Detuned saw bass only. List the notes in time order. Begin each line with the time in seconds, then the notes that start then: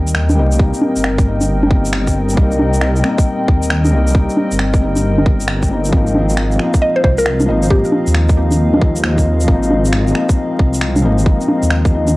Already playing: D#2
0.38 C2
0.96 G1
2.37 C2
3.48 D#2
3.93 C2
4.52 G1
5.93 G#1
7.04 C2
7.48 G#1
8.07 D#2
9.48 G#1
10.59 C2
11.04 G#1
11.63 D#2